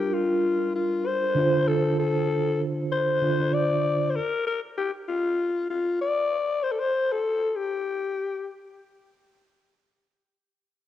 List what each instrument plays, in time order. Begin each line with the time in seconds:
Already playing: tine electric piano G3 D4 F4 A#4, alto saxophone G4
0.14 alto saxophone F4
0.75 alto saxophone F4
1.06 alto saxophone C5
1.35 tine electric piano D3 D4 F4
1.40 tine electric piano C5
1.68 alto saxophone A4
1.99 alto saxophone A4
2.92 alto saxophone C5
3.22 tine electric piano D3 D4 F4 C5
3.54 alto saxophone D5
4.10 alto saxophone C5
4.16 alto saxophone A#4
4.47 alto saxophone A#4
4.78 alto saxophone G4
5.08 alto saxophone F4
5.70 alto saxophone F4
6.01 alto saxophone D5
6.63 alto saxophone C5
6.72 alto saxophone A4
6.80 alto saxophone C5
7.12 alto saxophone A4
7.56 alto saxophone G4